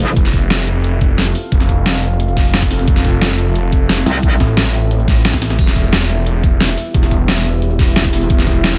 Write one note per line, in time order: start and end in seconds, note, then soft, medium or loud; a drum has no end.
0.00 0.15 F1 loud
0.00 0.12 B3 medium
0.00 0.12 E4 medium
0.00 0.12 G4 medium
0.00 0.12 E5 medium
0.08 snare medium
0.08 cabasa soft
0.16 0.49 F1 medium
0.16 5.55 C4 medium
0.16 5.55 F4 medium
0.16 5.55 A4 medium
0.16 2.85 F5 medium
0.16 kick loud
0.16 closed hi-hat medium
0.25 snare soft
0.33 kick medium
0.33 closed hi-hat medium
0.33 cabasa medium
0.50 1.34 F1 medium
0.50 snare loud
0.50 closed hi-hat medium
0.50 closed hi-hat loud
0.59 closed hi-hat soft
0.67 closed hi-hat medium
0.67 cabasa medium
0.84 closed hi-hat medium
1.01 kick loud
1.01 closed hi-hat medium
1.01 cabasa medium
1.18 snare loud
1.18 closed hi-hat medium
1.27 snare soft
1.35 closed hi-hat medium
1.35 open hi-hat medium
1.35 cabasa medium
1.44 closed hi-hat soft
1.52 2.86 F1 medium
1.52 kick loud
1.52 closed hi-hat loud
1.52 closed hi-hat medium
1.60 snare medium
1.60 snare soft
1.69 kick medium
1.69 closed hi-hat medium
1.69 cabasa medium
1.86 snare loud
1.86 closed hi-hat medium
1.94 snare medium
2.03 snare soft
2.03 closed hi-hat medium
2.03 cabasa medium
2.20 closed hi-hat medium
2.28 closed hi-hat soft
2.37 kick loud
2.37 snare soft
2.37 closed hi-hat medium
2.37 open hi-hat medium
2.37 cabasa medium
2.54 snare loud
2.54 closed hi-hat medium
2.62 kick medium
2.62 snare soft
2.71 snare soft
2.71 closed hi-hat medium
2.71 open hi-hat medium
2.71 cabasa medium
2.79 snare medium
2.88 3.20 F1 medium
2.88 8.78 E5 medium
2.88 kick loud
2.88 closed hi-hat medium
2.88 closed hi-hat loud
2.96 snare soft
3.05 kick medium
3.05 closed hi-hat medium
3.05 cabasa medium
3.21 4.05 F1 medium
3.21 snare loud
3.21 closed hi-hat medium
3.21 closed hi-hat loud
3.30 closed hi-hat soft
3.38 closed hi-hat medium
3.38 cabasa medium
3.55 closed hi-hat medium
3.55 closed hi-hat loud
3.72 kick loud
3.72 closed hi-hat medium
3.72 cabasa medium
3.89 snare loud
3.89 closed hi-hat medium
3.98 snare soft
4.06 4.39 C2 loud
4.06 snare loud
4.06 closed hi-hat medium
4.06 open hi-hat medium
4.06 cabasa medium
4.15 snare loud
4.15 closed hi-hat medium
4.23 kick loud
4.23 closed hi-hat medium
4.23 closed hi-hat loud
4.32 snare medium
4.32 snare soft
4.32 cabasa soft
4.40 5.57 A1 loud
4.40 kick medium
4.40 snare loud
4.40 closed hi-hat medium
4.40 cabasa medium
4.49 closed hi-hat soft
4.57 snare loud
4.57 closed hi-hat medium
4.57 closed hi-hat loud
4.66 snare medium
4.74 snare soft
4.74 closed hi-hat medium
4.74 cabasa medium
4.91 closed hi-hat loud
4.91 closed hi-hat medium
5.00 closed hi-hat soft
5.08 kick loud
5.08 snare soft
5.08 closed hi-hat medium
5.08 cabasa medium
5.25 snare loud
5.25 closed hi-hat medium
5.33 kick medium
5.33 snare loud
5.33 snare soft
5.33 closed hi-hat medium
5.33 cabasa soft
5.42 snare loud
5.42 snare soft
5.42 closed hi-hat medium
5.42 open hi-hat medium
5.42 cabasa medium
5.50 snare loud
5.50 closed hi-hat medium
5.50 cabasa soft
5.59 5.91 E1 loud
5.59 8.78 B3 medium
5.59 8.78 E4 medium
5.59 8.78 G4 medium
5.59 kick loud
5.59 closed hi-hat medium
5.59 closed hi-hat loud
5.59 crash medium
5.67 snare soft
5.76 kick medium
5.76 closed hi-hat medium
5.76 cabasa medium
5.93 6.76 E1 loud
5.93 snare loud
5.93 closed hi-hat medium
5.93 closed hi-hat loud
6.01 closed hi-hat soft
6.10 closed hi-hat medium
6.10 cabasa medium
6.27 closed hi-hat medium
6.43 kick loud
6.43 closed hi-hat medium
6.43 cabasa medium
6.60 snare loud
6.60 closed hi-hat medium
6.69 snare medium
6.77 closed hi-hat medium
6.77 open hi-hat medium
6.77 cabasa medium
6.86 closed hi-hat soft
6.94 8.29 E1 medium
6.94 kick loud
6.94 closed hi-hat medium
6.94 closed hi-hat loud
7.03 snare medium
7.03 snare soft
7.11 kick medium
7.11 closed hi-hat medium
7.11 cabasa medium
7.28 snare loud
7.28 closed hi-hat medium
7.37 snare medium
7.45 snare soft
7.45 closed hi-hat medium
7.45 cabasa medium
7.62 closed hi-hat medium
7.71 closed hi-hat soft
7.79 kick loud
7.79 snare soft
7.79 closed hi-hat medium
7.79 open hi-hat medium
7.79 cabasa medium
7.96 snare loud
7.96 closed hi-hat medium
8.04 kick medium
8.04 snare medium
8.13 snare soft
8.13 closed hi-hat medium
8.13 open hi-hat medium
8.13 cabasa medium
8.22 snare medium
8.30 8.62 E1 medium
8.30 kick loud
8.30 closed hi-hat medium
8.30 closed hi-hat loud
8.38 snare soft
8.47 kick medium
8.47 closed hi-hat medium
8.47 cabasa medium
8.64 8.78 E1 loud
8.64 snare loud
8.64 closed hi-hat medium
8.72 closed hi-hat soft